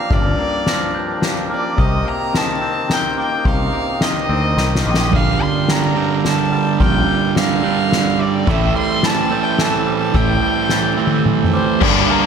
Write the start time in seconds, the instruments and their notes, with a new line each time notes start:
Already playing: clean electric guitar F3 A#3 D4, harmonium D4 G4 A#4 F5, violin F5, glockenspiel D6
0.10 picked electric bass G1, clean electric guitar G2, violin D5, glockenspiel F6, kick, ride
0.39 clean electric guitar A#3
0.67 clean electric guitar F3, glockenspiel A#6, snare, ride
0.94 clean electric guitar D4, glockenspiel G6
1.22 clean electric guitar F3, snare, ride
1.50 clean electric guitar A#3, violin D5, glockenspiel D6, ride
1.77 picked electric bass C2, clean electric guitar C3, harmonium C4 D#5, violin D#5, glockenspiel D#6, kick, ride
2.05 clean electric guitar A#3, violin A#5
2.33 clean electric guitar D#3, violin A5, glockenspiel A#6, snare, ride
2.61 clean electric guitar C4, glockenspiel G6
2.89 clean electric guitar D#3, snare, ride
2.93 violin G5
3.17 clean electric guitar A#3, violin G5, glockenspiel D6, ride
3.45 picked electric bass C2, clean electric guitar C3, violin F5, glockenspiel D#6, kick, ride
3.73 clean electric guitar A#3
4.01 clean electric guitar D#3, violin D#5, glockenspiel A#6, snare, ride
4.29 picked electric bass D2, clean electric guitar C4, glockenspiel G6
4.57 picked electric bass C2, clean electric guitar D#3, snare
4.76 snare
4.84 picked electric bass A#1, clean electric guitar A#3, violin D#5, glockenspiel D6
4.94 snare
5.12 picked electric bass A#1, distorted electric guitar G2 D3 G3, clean electric guitar A#2, harmonium D4 F5, violin F5, glockenspiel F6, kick, ride
5.40 clean electric guitar G3, violin C6
5.68 clean electric guitar D3, violin A#5, glockenspiel A#6, snare, ride
5.95 distorted electric guitar G2 D3 G3, clean electric guitar D4, glockenspiel G6
6.23 clean electric guitar D3, violin A5, snare, ride
6.52 clean electric guitar G3, glockenspiel D6, ride
6.79 picked electric bass A#1, distorted electric guitar G2 D3 G3, clean electric guitar A#2, violin G5, glockenspiel F6, kick, ride
7.08 clean electric guitar G3
7.35 clean electric guitar D3, violin F5, glockenspiel A#6, snare, ride
7.63 distorted electric guitar D3 G3, clean electric guitar D4, glockenspiel G6
7.67 distorted electric guitar G2
7.91 clean electric guitar D3, snare, ride
8.19 clean electric guitar G3, violin D5, glockenspiel D6, ride
8.46 picked electric bass A1, distorted electric guitar A2 E3 A3, clean electric guitar A2, harmonium C4 G4 A4 E5, glockenspiel E6, kick, ride
8.51 violin E5
8.74 clean electric guitar G3, violin C6
9.03 clean electric guitar E3, violin A5, glockenspiel A6, snare, ride
9.30 distorted electric guitar A2 E3 A3, clean electric guitar C4, glockenspiel G6
9.43 violin G5
9.58 clean electric guitar E3, violin A5, snare, ride
9.86 clean electric guitar G3, glockenspiel D6, ride
9.98 violin A5
10.13 picked electric bass A1, distorted electric guitar A2 E3 A3, clean electric guitar A2, violin G5, glockenspiel E6, kick, ride
10.42 clean electric guitar G3
10.69 clean electric guitar E3, glockenspiel A6, snare
10.97 distorted electric guitar A2 E3 A3, clean electric guitar C4, glockenspiel G6
11.07 high tom
11.25 clean electric guitar E3, mid tom
11.44 mid tom
11.53 clean electric guitar G3, violin C5, glockenspiel D6
11.81 picked electric bass G1, distorted electric guitar G2 D3 G3 A#3 D4, clean electric guitar G2, harmonium D4 G4 A#4 F5, violin D5, kick, crash
12.08 distorted electric guitar D3 G3 A#3 D4, clean electric guitar A#3, violin A#5
12.22 distorted electric guitar A#3 D4